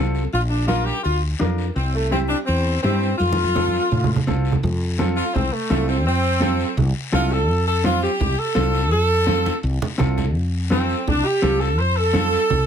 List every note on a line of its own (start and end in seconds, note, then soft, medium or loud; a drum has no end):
0.00 0.26 C2 medium
0.00 0.22 C4 medium
0.00 0.22 F4 medium
0.00 0.23 A4 medium
0.15 short guiro medium
0.33 0.91 A#1 medium
0.33 0.41 F4 medium
0.33 high conga soft
0.33 long guiro medium
0.50 0.67 D4 medium
0.67 0.93 D4 medium
0.67 0.84 F4 medium
0.67 0.93 F4 medium
0.67 0.94 A#4 medium
0.67 high conga medium
0.67 short guiro medium
0.85 1.04 G4 medium
0.85 short guiro medium
1.03 1.34 D2 medium
1.03 1.21 F4 medium
1.03 high conga soft
1.03 long guiro medium
1.40 1.69 F2 medium
1.40 1.65 D4 medium
1.40 1.65 F4 medium
1.40 1.66 A#4 medium
1.40 high conga medium
1.40 short guiro medium
1.58 short guiro medium
1.76 2.33 C2 medium
1.76 1.93 C4 medium
1.76 high conga soft
1.76 long guiro medium
1.94 2.11 A3 medium
2.11 2.19 C4 medium
2.11 2.37 C4 medium
2.11 2.37 E4 medium
2.11 2.37 G4 medium
2.11 high conga medium
2.11 short guiro medium
2.29 2.37 D4 medium
2.29 short guiro medium
2.46 2.77 E2 medium
2.46 2.80 C4 medium
2.46 high conga soft
2.46 long guiro medium
2.82 3.13 G2 medium
2.82 3.16 C4 medium
2.82 3.09 C4 medium
2.82 3.09 E4 medium
2.82 3.09 G4 medium
2.82 high conga medium
2.82 short guiro medium
3.02 short guiro medium
3.18 3.78 F2 medium
3.18 4.22 F4 loud
3.18 high conga medium
3.18 long guiro medium
3.33 high conga medium
3.44 high conga medium
3.55 3.80 C4 medium
3.55 3.81 F4 medium
3.55 3.81 A4 medium
3.55 low conga medium
3.55 short guiro medium
3.68 high conga medium
3.74 short guiro medium
3.92 4.20 A2 medium
3.92 low conga medium
3.92 long guiro medium
4.04 low conga medium
4.16 low conga medium
4.27 4.56 C2 medium
4.27 4.52 C4 medium
4.27 4.52 F4 medium
4.27 4.53 A4 medium
4.27 low conga medium
4.27 short guiro medium
4.45 short guiro medium
4.52 low conga medium
4.63 5.20 F2 loud
4.63 high conga soft
4.63 low conga medium
4.63 long guiro medium
4.99 5.24 C4 medium
4.99 5.24 F4 medium
4.99 5.24 A4 loud
4.99 high conga medium
4.99 short guiro medium
5.16 5.34 F4 medium
5.16 short guiro medium
5.34 5.49 C2 medium
5.34 5.52 C4 medium
5.34 high conga soft
5.34 low conga medium
5.34 long guiro medium
5.53 5.70 A3 medium
5.70 6.06 C2 medium
5.70 5.88 A3 medium
5.70 5.95 C4 medium
5.70 5.96 F4 medium
5.70 5.95 A4 medium
5.70 high conga medium
5.70 short guiro medium
5.88 6.06 C4 medium
5.88 short guiro medium
6.06 6.63 F2 loud
6.06 6.76 C4 loud
6.06 high conga soft
6.06 long guiro medium
6.40 6.66 C4 medium
6.40 6.67 F4 medium
6.40 6.67 A4 medium
6.40 high conga medium
6.40 short guiro medium
6.60 short guiro medium
6.77 6.92 C2 loud
6.77 high conga soft
6.77 low conga medium
6.77 long guiro medium
7.12 7.49 C2 medium
7.12 7.38 C4 medium
7.12 7.30 F4 medium
7.12 7.38 F4 medium
7.12 7.38 A4 medium
7.12 high conga medium
7.12 short guiro medium
7.31 7.66 A4 medium
7.31 short guiro medium
7.49 8.06 F2 loud
7.49 high conga soft
7.49 long guiro medium
7.67 7.84 A4 medium
7.84 8.09 C4 medium
7.84 8.10 F4 medium
7.84 8.02 F4 medium
7.84 8.10 C5 medium
7.84 high conga medium
7.84 short guiro medium
8.02 8.38 G4 medium
8.02 short guiro medium
8.20 8.35 C2 medium
8.20 high conga soft
8.20 low conga medium
8.20 long guiro medium
8.38 8.90 A4 medium
8.55 8.92 C2 loud
8.55 8.81 C4 medium
8.55 8.81 F4 medium
8.55 8.81 A4 medium
8.55 high conga medium
8.55 short guiro medium
8.74 short guiro medium
8.91 9.49 F2 loud
8.91 9.61 A4 loud
8.91 high conga soft
8.91 long guiro medium
9.27 9.53 C4 medium
9.27 9.53 F4 medium
9.27 9.53 A4 medium
9.27 high conga medium
9.27 short guiro medium
9.45 high conga medium
9.45 short guiro medium
9.63 9.78 C2 medium
9.63 long guiro medium
9.82 low conga medium
9.98 10.35 C2 medium
9.98 10.24 C4 medium
9.98 10.24 F4 medium
9.98 10.24 A4 medium
9.98 low conga medium
9.98 short guiro medium
10.17 low conga medium
10.17 short guiro medium
10.35 10.93 F2 loud
10.35 high conga soft
10.35 long guiro medium
10.70 10.96 C4 medium
10.70 11.06 C4 medium
10.70 10.96 F4 medium
10.70 10.96 A4 medium
10.70 high conga medium
10.70 short guiro medium
10.89 short guiro medium
11.07 11.22 C2 medium
11.07 11.25 D4 medium
11.07 high conga soft
11.07 low conga medium
11.07 long guiro medium
11.25 11.60 G4 medium
11.42 11.78 C2 medium
11.42 11.68 C4 medium
11.42 11.68 F4 medium
11.42 11.68 A4 medium
11.42 high conga medium
11.42 short guiro medium
11.60 11.78 A4 medium
11.60 short guiro medium
11.78 12.36 F2 loud
11.78 11.96 C5 medium
11.78 high conga soft
11.78 long guiro medium
11.96 12.66 A4 loud
12.13 12.39 C4 medium
12.13 12.39 F4 medium
12.13 12.39 A4 medium
12.13 high conga medium
12.13 short guiro medium
12.32 short guiro medium
12.50 12.65 C2 medium
12.50 high conga soft
12.50 low conga medium
12.50 long guiro medium